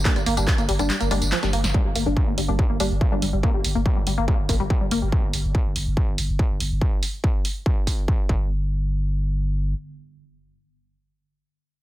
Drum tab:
HH |xxoxxxoxxxoxxxox|--o---o---o---o-|--o---o---o---o-|--o---o---o---o-|
TB |xx-xxx-xxx-xxx-x|----------------|----------------|----------------|
CP |x---x---x---x---|----------------|----------------|----------------|
SD |-r--r--r--r-oo-o|----------------|----------------|----------------|
BD |o---o-----------|o---o---o---o---|o---o---o-o-o---|o---o---o---o---|

HH |--o---o---o-----|----------------|----------------|
TB |----------------|----------------|----------------|
CP |----------------|----------------|----------------|
SD |----------------|----------------|----------------|
BD |o---o---o-o-o-o-|----------------|----------------|